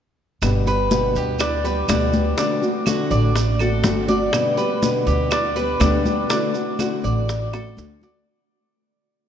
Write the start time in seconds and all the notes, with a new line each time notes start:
0.42 G1 B2 D3 G3 B3 G4, high bongo, high conga, claves, maracas
0.66 G3 B3 G4 B4, high conga, maracas
0.91 B2 D3 G3 B3 G4, high bongo, high conga, maracas
1.15 D2 G4, high bongo, high conga, maracas
1.39 D4, muted nylon-string guitar stroke, high bongo, high conga, claves, maracas
1.64 G3 B3 G4 B4, high bongo, high conga, maracas
1.88 D2 B2 D3 G3 B3 D4 G4, high bongo, low bongo, high conga, claves, maracas
2.13 G3 B3 G4, high bongo, high conga, maracas
2.37 D3 A3 C4 D4 F#4, high bongo, high conga, maracas
2.62 A3 C4 F#4, high bongo, high conga, maracas
2.86 D3 A3 C4 F#4, high bongo, high conga, claves, maracas
3.11 A1 D5, high conga, maracas
3.35 muted nylon-string guitar stroke, high bongo, high conga, maracas
3.59 A3 C4 F#4 A4, high bongo, high conga, claves, maracas
3.83 G1 D3 A3 C4 F#4, high bongo, low bongo, high conga, maracas
4.08 A3 C4 F#4 D5, high bongo, high conga, maracas
4.32 B2 D3 G3 B3 G4, high bongo, high conga, claves, maracas
4.57 G3 B3 G4 B4, high conga, maracas
4.81 B2 D3 G3 B3 G4, high bongo, high conga, maracas
5.06 D2 G4, high bongo, high conga, maracas
5.31 D4, muted nylon-string guitar stroke, high bongo, high conga, claves, maracas
5.56 G3 B3 G4 B4, high bongo, high conga, maracas
5.80 D2 B2 D3 G3 B3 D4 G4, high bongo, low bongo, high conga, claves, maracas
6.05 G3 B3 G4, high bongo, high conga, maracas
6.30 D3 A3 C4 D4 F#4, high bongo, high conga, maracas
6.54 A3 C4 F#4, high bongo, high conga, maracas
6.79 D3 A3 C4 F#4, high bongo, high conga, claves, maracas
7.04 A1 D5, high conga, maracas
7.29 muted nylon-string guitar stroke, high bongo, high conga, maracas
7.52 A3 C4 F#4 A4, high bongo, high conga, claves, maracas
7.76 D2 D3 A3 C4 F#4, low bongo, high conga, maracas
8.01 A3 C4 F#4 D5, low bongo, high conga, maracas